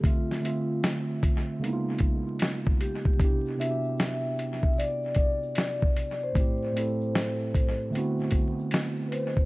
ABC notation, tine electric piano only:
X:1
M:4/4
L:1/8
Q:"Swing 16ths" 1/4=76
K:Clyd
V:1 name="Tine electric piano"
[D,A,C=Fe] [D,A,CFe]3 [^C,^G,^A,B,^DE^E]4 | [C,B,DEG] [C,B,DEFG]4 z3 | [A,,A,CEG] [A,,A,CEA]3 [D,A,B,CEF]4 |]